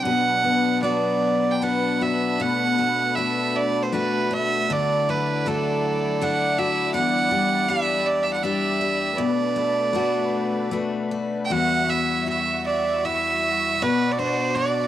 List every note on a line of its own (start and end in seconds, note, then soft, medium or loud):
0.00 0.11 C4 soft
0.00 0.83 D4 soft
0.00 4.64 D4 medium
0.00 0.11 G4 medium
0.00 0.81 F#5 medium
0.05 2.39 B2 medium
0.05 2.38 F#3 medium
0.05 4.65 B4 medium
0.44 0.82 B3 soft
0.82 1.61 B3 soft
0.82 1.62 D4 soft
0.82 1.63 F#4 medium
0.82 1.53 D5 medium
1.51 1.64 G5 medium
1.62 2.78 B3 soft
1.62 3.17 D4 soft
1.62 2.01 F#4 soft
1.62 2.03 F#5 medium
2.01 3.18 F#4 soft
2.01 2.43 E5 medium
2.40 4.68 B2 medium
2.40 4.67 A3 medium
2.40 3.17 F#5 medium
2.79 3.16 A3 soft
3.15 3.92 A3 soft
3.15 3.93 D4 medium
3.15 3.94 F#4 soft
3.15 3.57 E5 medium
3.56 3.84 D5 medium
3.83 3.94 C5 medium
3.92 5.08 A3 soft
3.92 5.46 D4 medium
3.92 4.30 F#4 medium
3.92 4.34 B4 medium
4.31 5.48 F#4 soft
4.31 4.73 E5 medium
4.66 6.90 F#3 medium
4.66 9.11 E4 medium
4.66 9.10 D5 medium
4.70 6.97 D3 medium
4.70 5.11 D5 medium
5.09 5.45 A3 soft
5.09 5.49 B4 medium
5.46 6.20 A3 medium
5.46 6.22 D4 medium
5.46 6.21 F#4 medium
5.46 6.23 A4 medium
6.21 7.01 A3 medium
6.21 7.69 D4 medium
6.21 6.58 F#4 medium
6.21 6.60 F#5 medium
6.59 7.01 F#4 medium
6.59 6.94 E5 medium
6.94 9.16 E2 medium
6.94 9.14 G3 medium
6.94 7.70 F#5 medium
7.31 7.67 G3 medium
7.69 8.42 G3 medium
7.69 8.43 D4 soft
7.69 8.43 G4 medium
7.69 8.07 E5 medium
8.06 8.25 D5 medium
8.23 8.32 E5 medium
8.33 8.45 F#5 medium
8.43 9.24 G3 soft
8.43 9.94 D4 medium
8.43 8.80 G4 medium
8.43 9.19 E5 medium
8.81 9.25 G4 soft
9.15 11.51 B2 medium
9.15 11.47 A3 medium
9.15 11.47 D4 soft
9.15 11.47 B4 medium
9.15 10.71 D5 medium
9.56 9.92 A3 soft
9.93 10.70 A3 soft
9.93 10.71 D4 medium
9.93 10.73 F#4 medium
10.71 11.57 A3 medium
10.71 11.58 D4 soft
10.71 11.11 F#4 soft
11.11 11.51 F#4 soft
11.45 11.53 G5 medium
11.50 13.80 E2 medium
11.50 13.78 G3 soft
11.50 14.88 F#4 medium
11.50 12.26 F#4 medium
11.50 13.78 E5 medium
11.50 11.91 F#5 medium
11.88 13.04 E4 soft
11.88 12.28 E5 medium
12.26 13.82 F#4 medium
12.26 12.64 E5 medium
12.66 13.07 D5 medium
13.05 13.88 E4 soft
13.05 13.84 E5 medium
13.78 14.88 B2 medium
13.78 14.13 B4 medium
13.78 14.88 D5 medium
13.83 14.54 F#4 soft
14.12 14.20 D5 medium
14.19 14.88 D4 soft
14.19 14.56 C5 medium
14.55 14.88 F#4 medium
14.55 14.88 D5 medium